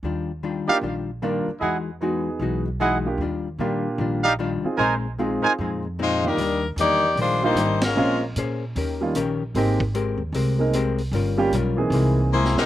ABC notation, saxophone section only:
X:1
M:4/4
L:1/8
Q:"Swing" 1/4=151
K:Eb
V:1 name="Saxophone section"
z8 | z8 | z8 | z6 [A,EFc] [G,DEB]- |
[G,DEB] z [B,EGd]2 [A,DFc] [B,EGc]2 [A,_DFB]- | [A,_DFB] z6 z | z8 | z6 [B,=E^Gc] [^G,^D=GB] |]